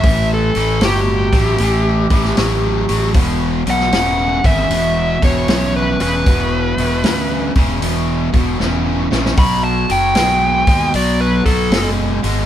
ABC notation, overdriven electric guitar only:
X:1
M:4/4
L:1/8
Q:"Swing" 1/4=77
K:A
V:1 name="Overdriven electric guitar" clef=bass
[A,,E,] [A,,E,] [A,,F,] [A,,F,] [A,,E,] [A,,E,] [A,,F,] [A,,F,] | [E,,B,,] [E,,B,,] [E,,C,] [E,,C,] [E,,B,,] [E,,B,,] [E,,C,] [E,,C,] | [E,,B,,] [E,,B,,] [E,,C,] [E,,C,] [E,,B,,] [E,,B,,] [E,,C,] [E,,C,] | [B,,F,] [B,,F,] [B,,G,] [B,,G,] [B,,F,] [B,,F,] [B,,G,] [B,,G,] |]